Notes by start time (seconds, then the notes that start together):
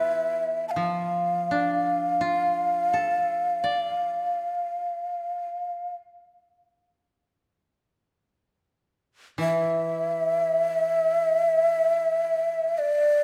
Already playing: E3 B3 E4 F4 B4 E5
0.68 F5 A5
0.76 F3
1.51 D4
2.21 F4
2.93 A4
3.64 D5
9.38 E3 E5
12.78 D5